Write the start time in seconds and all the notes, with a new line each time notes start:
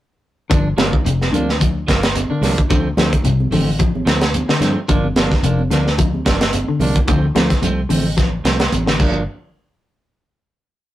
0.50 G1 D3 F3 D4, muted clean electric guitar stroke, kick, closed hi-hat, shekere
0.77 G1 F3 A#3 D4, snare, closed hi-hat, high conga
0.93 kick
1.05 F1 C3, closed hi-hat, low conga, shekere
1.22 snare, high conga
1.32 D2 D3 F3 A#3 D4, closed hi-hat, high conga, low conga, shekere
1.49 snare
1.60 F3, kick, closed hi-hat, shekere
1.87 G1 F3 A#3, muted clean electric guitar stroke, kick, snare, closed hi-hat, shekere
2.03 snare, closed hi-hat
2.15 closed hi-hat, high conga, shekere
2.29 D3 A#3 D4, muted fingered electric bass stroke
2.41 C2 F3 A#3 D4, snare, open hi-hat, high conga, low conga, shekere
2.58 kick, closed hi-hat
2.70 D2 D3 F3 A3 C4, kick, closed hi-hat, shekere
2.97 D2 F3 A3 C4, snare, closed hi-hat, high conga, shekere
3.13 kick, closed hi-hat
3.24 C2 C3, closed hi-hat, low conga, shekere
3.40 high conga
3.51 A1 D3 F3 A3 C4, open hi-hat, high conga, low conga, shekere
3.79 F3, kick, closed hi-hat, shekere
3.95 high conga
4.05 D2 F3 A3 C4, snare, closed hi-hat, shekere
4.21 snare, closed hi-hat
4.34 closed hi-hat, high conga, low conga, shekere
4.48 D3 A3 C4, muted fingered electric bass stroke, snare
4.60 G2 F3 A3 C4, snare, closed hi-hat, high conga, low conga, shekere
4.88 G1 D3 F3 A#3 D4, kick, closed hi-hat, shekere
5.03 high conga
5.16 G1 F3 A#3 D4, snare, closed hi-hat, high conga, shekere
5.32 kick, snare
5.43 F1 C3 F3 A#3 D4, closed hi-hat, shekere
5.59 high conga
5.71 D2 D3 F3 A#3 D4, snare, closed hi-hat, high conga, low conga, shekere
5.87 snare
5.98 F3, kick, closed hi-hat, shekere
6.14 high conga
6.25 G1 F3 A#3 D4, kick, snare, closed hi-hat, shekere
6.41 snare, closed hi-hat
6.53 closed hi-hat, high conga, shekere
6.68 D3, muted fingered electric bass stroke
6.79 C2 F3 A#3 D4, open hi-hat, high conga, low conga, shekere
6.96 kick, closed hi-hat
7.08 D2 D3 F3 A3 C4, kick, closed hi-hat, shekere
7.35 D2 F3 A3 C4, snare, closed hi-hat, high conga, shekere
7.50 kick, snare, closed hi-hat
7.62 C2 C3 F3 A3 C4, closed hi-hat, low conga, shekere
7.89 A1 D3 F3 A3 C4, open hi-hat, high conga, low conga, shekere
8.17 F3, kick, snare, closed hi-hat, shekere
8.44 C2 F3 A3 C4, snare, closed hi-hat, shekere
8.60 snare, closed hi-hat
8.72 A1, closed hi-hat, high conga, low conga, shekere
8.86 D3, snare
8.98 G1 G2 F3 A#3 D4, kick, crash, low conga, shekere